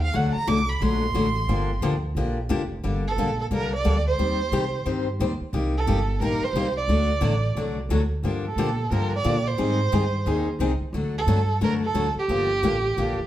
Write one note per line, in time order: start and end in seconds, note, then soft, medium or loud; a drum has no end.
0.00 0.13 D#2 medium
0.00 0.17 F5 loud
0.13 0.33 D2 medium
0.13 0.34 D3 medium
0.13 0.34 F#3 medium
0.13 0.35 A3 medium
0.13 0.35 D4 medium
0.13 0.35 F#4 medium
0.13 0.34 F#5 medium
0.35 0.49 A#5 loud
0.35 muted upright bass stroke soft
0.47 0.80 C2 medium
0.47 0.59 D3 loud
0.47 0.59 F#3 loud
0.47 0.59 A3 medium
0.47 0.59 D4 loud
0.47 0.59 F#4 loud
0.47 0.70 D6 loud
0.69 0.84 B5 loud
0.81 1.14 A#1 medium
0.81 1.02 D3 medium
0.81 1.02 F#3 medium
0.81 1.02 A3 medium
0.81 1.02 D4 medium
0.81 1.03 F#4 medium
0.81 1.83 C6 loud
1.14 1.47 A1 medium
1.14 1.26 D3 medium
1.14 1.26 F#3 medium
1.14 1.26 A3 medium
1.14 1.26 D4 medium
1.14 1.26 F#4 medium
1.47 1.80 G1 medium
1.47 1.69 D3 medium
1.47 1.70 F3 medium
1.47 1.70 A#3 medium
1.47 1.70 D4 medium
1.47 1.70 G4 medium
1.81 2.14 D2 medium
1.81 1.93 D3 loud
1.81 1.94 F3 medium
1.81 1.94 A#3 loud
1.81 1.94 D4 loud
1.81 1.94 G4 medium
2.15 2.48 A#1 medium
2.15 2.37 D3 medium
2.15 2.37 F3 medium
2.15 2.37 A#3 medium
2.15 2.37 D4 medium
2.15 2.38 G4 medium
2.49 2.82 F1 medium
2.49 2.61 D3 medium
2.49 2.61 F3 loud
2.49 2.61 A#3 medium
2.49 2.61 D4 medium
2.49 2.61 G4 loud
2.83 3.16 G1 medium
2.83 3.04 D3 medium
2.83 3.05 G3 medium
2.83 3.05 A#3 medium
2.83 3.05 D4 medium
2.83 3.05 A4 medium
3.08 3.37 A4 medium
3.16 3.49 A#1 medium
3.16 3.29 D3 medium
3.16 3.29 G3 medium
3.16 3.29 A#3 loud
3.16 3.29 D4 medium
3.16 3.29 A4 medium
3.41 3.46 A4 medium
3.50 3.83 C2 medium
3.50 3.72 D3 medium
3.50 3.72 G3 medium
3.50 3.72 A#3 medium
3.50 3.72 D4 medium
3.50 3.72 A4 medium
3.50 3.73 A#4 medium
3.76 4.04 D5 medium
3.84 4.18 D2 medium
3.84 3.96 D3 medium
3.84 3.96 G3 medium
3.84 3.96 A#3 medium
3.84 3.96 D4 loud
3.84 3.96 A4 medium
4.08 5.04 C5 loud
4.18 4.51 D#2 medium
4.18 4.39 D#3 medium
4.18 4.40 G3 medium
4.18 4.40 C4 medium
4.18 4.40 G4 medium
4.18 4.40 C5 medium
4.51 4.85 C3 medium
4.51 4.63 D#3 medium
4.51 4.64 G3 loud
4.51 4.64 C4 loud
4.51 4.64 G4 loud
4.51 4.64 C5 loud
4.85 5.18 G2 medium
4.85 5.07 D#3 medium
4.85 5.07 G3 medium
4.85 5.07 C4 medium
4.85 5.07 G4 medium
4.85 5.07 C5 medium
5.19 5.39 D#2 medium
5.19 5.31 D#3 medium
5.19 5.31 G3 medium
5.19 5.31 C4 medium
5.19 5.31 G4 medium
5.19 5.32 C5 medium
5.40 muted upright bass stroke soft
5.53 5.86 C2 medium
5.53 5.74 C3 medium
5.53 5.74 G3 medium
5.53 5.74 A#3 medium
5.53 5.74 D#4 medium
5.53 5.74 G4 medium
5.77 6.19 A4 medium
5.87 6.20 G1 medium
5.87 5.98 C3 medium
5.87 5.98 G3 medium
5.87 5.98 A#3 medium
5.87 5.99 D#4 medium
5.87 5.99 G4 loud
6.20 6.40 A#1 medium
6.20 6.42 C3 medium
6.20 6.42 G3 medium
6.20 6.42 A#3 medium
6.20 6.42 D#4 medium
6.20 6.42 G4 medium
6.20 6.45 A#4 medium
6.40 6.76 C5 medium
6.40 muted upright bass stroke soft
6.53 6.86 C2 medium
6.53 6.66 C3 medium
6.53 6.66 G3 medium
6.53 6.66 A#3 medium
6.53 6.67 D#4 medium
6.53 6.66 G4 medium
6.77 7.73 D5 loud
6.87 7.20 D2 medium
6.87 7.09 D3 medium
6.87 7.09 F#3 medium
6.87 7.09 A3 medium
6.87 7.09 D4 medium
6.87 7.10 F#4 medium
7.21 7.54 A1 medium
7.21 7.32 D3 loud
7.21 7.33 F#3 loud
7.21 7.33 A3 medium
7.21 7.33 D4 loud
7.21 7.33 F#4 loud
7.55 7.88 C2 medium
7.55 7.77 D3 medium
7.55 7.77 F#3 medium
7.55 7.77 A3 medium
7.55 7.77 D4 medium
7.55 7.77 F#4 medium
7.89 8.22 D2 medium
7.89 8.01 D3 medium
7.89 8.01 F#3 medium
7.89 8.01 A3 medium
7.89 8.01 D4 medium
7.89 8.01 F#4 medium
8.23 8.55 G2 medium
8.23 8.44 D3 medium
8.23 8.45 F3 medium
8.23 8.45 A#3 medium
8.23 8.45 D4 medium
8.23 8.45 G4 medium
8.46 8.89 A4 medium
8.56 8.89 A#2 medium
8.56 8.69 D3 medium
8.56 8.69 F3 medium
8.56 8.69 A#3 loud
8.56 8.69 D4 medium
8.56 8.69 G4 loud
8.91 9.23 G2 medium
8.91 9.12 D3 medium
8.91 9.12 F3 medium
8.91 9.12 A#3 medium
8.91 9.12 D4 medium
8.91 9.12 G4 medium
8.91 9.13 A#4 medium
9.15 9.49 D5 loud
9.24 9.57 A#2 medium
9.24 9.36 D3 medium
9.24 9.36 F3 medium
9.24 9.36 A#3 medium
9.24 9.36 D4 medium
9.24 9.36 G4 medium
9.47 10.48 C5 loud
9.58 9.91 G#2 medium
9.58 9.79 D#3 medium
9.58 9.79 G3 medium
9.58 9.79 C4 medium
9.58 9.79 D#4 medium
9.58 9.79 G#4 medium
9.92 10.25 G2 medium
9.92 10.03 D#3 loud
9.92 10.04 G3 medium
9.92 10.03 C4 medium
9.92 10.04 D#4 loud
9.92 10.04 G#4 medium
10.25 10.58 D#2 medium
10.25 10.47 D#3 medium
10.25 10.47 G3 medium
10.25 10.47 C4 medium
10.25 10.47 D#4 medium
10.25 10.47 G#4 medium
10.59 10.79 C2 medium
10.59 10.71 D#3 medium
10.59 10.71 G3 medium
10.59 10.71 C4 medium
10.59 10.71 D#4 loud
10.59 10.71 G#4 medium
10.80 muted upright bass stroke soft
10.93 11.26 D2 medium
10.93 11.15 D3 medium
10.93 11.15 F#3 medium
10.93 11.15 A3 medium
10.93 11.15 D4 medium
10.93 11.15 F#4 medium
11.18 11.60 A4 medium
11.26 11.60 G2 medium
11.26 11.39 D3 medium
11.26 11.39 F#3 loud
11.26 11.39 A3 loud
11.26 11.39 D4 loud
11.26 11.39 F#4 loud
11.61 11.94 F#2 medium
11.61 11.82 D3 medium
11.61 11.82 F#3 medium
11.61 11.82 A3 medium
11.61 11.82 D4 medium
11.61 11.82 F#4 medium
11.61 11.73 A#4 loud
11.85 12.15 A4 loud
11.94 12.14 D2 medium
11.94 12.06 D3 medium
11.94 12.06 F#3 medium
11.94 12.06 A3 medium
11.94 12.06 D4 medium
11.94 12.06 F#4 loud
12.15 muted upright bass stroke soft
12.19 13.27 G4 loud
12.28 12.61 G1 medium
12.28 12.50 D3 medium
12.28 12.50 F3 medium
12.28 12.50 A#3 medium
12.28 12.50 D4 medium
12.28 12.51 G4 medium
12.62 12.95 A1 medium
12.62 12.74 D3 loud
12.62 12.74 F3 medium
12.62 12.74 A#3 medium
12.62 12.74 D4 medium
12.62 12.75 G4 medium
12.97 13.16 A#1 medium
12.97 13.18 D3 medium
12.97 13.18 F3 medium
12.97 13.18 A#3 medium
12.97 13.19 D4 medium
12.97 13.18 G4 medium
13.19 muted upright bass stroke soft